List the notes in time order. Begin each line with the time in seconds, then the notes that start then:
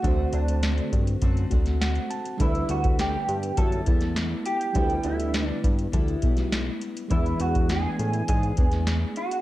Already playing: F#4
0.02 D2 D3 A3 D4 F#4, kick, closed hi-hat
0.06 C4 F#4 C5
0.33 D2 D4, closed hi-hat
0.48 closed hi-hat
0.63 snare, closed hi-hat
0.78 closed hi-hat
0.93 G2, kick, closed hi-hat
1.07 closed hi-hat
1.21 F#2 D3 A3 C4 F#4, kick, closed hi-hat
1.37 closed hi-hat
1.50 D2 A3 C4 F#4, kick, closed hi-hat
1.66 snare, closed hi-hat
1.81 F#5, snare, closed hi-hat
1.95 closed hi-hat
2.10 A5, closed hi-hat
2.25 closed hi-hat
2.37 D2 D3 G3 D4 E4, kick, closed hi-hat
2.41 B3 E4 B4
2.55 closed hi-hat
2.69 D2 F#4, closed hi-hat
2.84 kick, closed hi-hat
2.99 G4, snare, closed hi-hat
3.28 G2, closed hi-hat
3.43 closed hi-hat
3.57 F#2 D3 G3 B3 E4 A4, kick, closed hi-hat
3.72 closed hi-hat
3.86 E2 G3 B3 E4, kick, closed hi-hat
4.01 snare, closed hi-hat
4.16 snare, closed hi-hat
4.46 G4, closed hi-hat
4.61 closed hi-hat
4.73 D2 D3 G3 D4 E4, kick, closed hi-hat
4.78 B3 E4 B4
4.90 closed hi-hat
5.03 D2 E4, closed hi-hat
5.20 closed hi-hat
5.34 snare, closed hi-hat
5.47 D4
5.64 G2, kick, closed hi-hat
5.79 closed hi-hat
5.92 D2 D3 G3 B3 E4, kick, closed hi-hat
6.08 closed hi-hat
6.22 B1 G3 B3 E4, kick, closed hi-hat
6.37 snare, closed hi-hat
6.52 snare, closed hi-hat
6.81 closed hi-hat
6.97 closed hi-hat
7.08 E2 E3 G#3 B3 D4 E4, kick, closed hi-hat
7.13 D4 G#4 B4
7.26 closed hi-hat
7.40 E2 F#4, closed hi-hat
7.55 kick, closed hi-hat
7.69 G#4, snare, closed hi-hat
7.99 A2, closed hi-hat
8.13 closed hi-hat
8.28 G#2 E3 B3 D4 G#4, kick, closed hi-hat
8.43 closed hi-hat
8.57 E2 B3 D4 G#4, kick, closed hi-hat
8.72 snare, closed hi-hat
8.87 snare, closed hi-hat
9.16 F#4, closed hi-hat
9.31 closed hi-hat